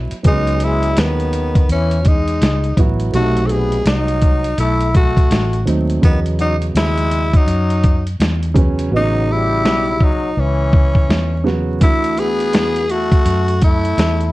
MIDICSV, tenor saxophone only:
0, 0, Header, 1, 2, 480
1, 0, Start_track
1, 0, Key_signature, 4, "minor"
1, 0, Tempo, 722892
1, 167, Time_signature, 4, 2, 24, 8
1, 9508, End_track
2, 0, Start_track
2, 0, Title_t, "Tenor saxophone"
2, 0, Program_c, 0, 66
2, 181, Note_on_c, 0, 63, 104
2, 422, Note_on_c, 0, 64, 95
2, 432, Note_off_c, 0, 63, 0
2, 658, Note_on_c, 0, 59, 85
2, 668, Note_off_c, 0, 64, 0
2, 1132, Note_off_c, 0, 59, 0
2, 1141, Note_on_c, 0, 61, 88
2, 1382, Note_on_c, 0, 63, 92
2, 1392, Note_off_c, 0, 61, 0
2, 1854, Note_off_c, 0, 63, 0
2, 2092, Note_on_c, 0, 66, 108
2, 2302, Note_on_c, 0, 69, 78
2, 2312, Note_off_c, 0, 66, 0
2, 2334, Note_on_c, 0, 68, 103
2, 2344, Note_off_c, 0, 69, 0
2, 2567, Note_off_c, 0, 68, 0
2, 2571, Note_on_c, 0, 63, 91
2, 3022, Note_off_c, 0, 63, 0
2, 3054, Note_on_c, 0, 64, 91
2, 3274, Note_off_c, 0, 64, 0
2, 3295, Note_on_c, 0, 66, 91
2, 3744, Note_off_c, 0, 66, 0
2, 4013, Note_on_c, 0, 59, 87
2, 4119, Note_off_c, 0, 59, 0
2, 4254, Note_on_c, 0, 63, 89
2, 4360, Note_off_c, 0, 63, 0
2, 4495, Note_on_c, 0, 64, 114
2, 4889, Note_on_c, 0, 63, 94
2, 4899, Note_off_c, 0, 64, 0
2, 5362, Note_off_c, 0, 63, 0
2, 5951, Note_on_c, 0, 63, 109
2, 6187, Note_on_c, 0, 64, 110
2, 6197, Note_off_c, 0, 63, 0
2, 6662, Note_on_c, 0, 63, 90
2, 6672, Note_off_c, 0, 64, 0
2, 6904, Note_on_c, 0, 61, 88
2, 6914, Note_off_c, 0, 63, 0
2, 7615, Note_off_c, 0, 61, 0
2, 7856, Note_on_c, 0, 64, 108
2, 8095, Note_on_c, 0, 68, 117
2, 8105, Note_off_c, 0, 64, 0
2, 8572, Note_on_c, 0, 66, 102
2, 8582, Note_off_c, 0, 68, 0
2, 9049, Note_off_c, 0, 66, 0
2, 9057, Note_on_c, 0, 64, 99
2, 9508, Note_off_c, 0, 64, 0
2, 9508, End_track
0, 0, End_of_file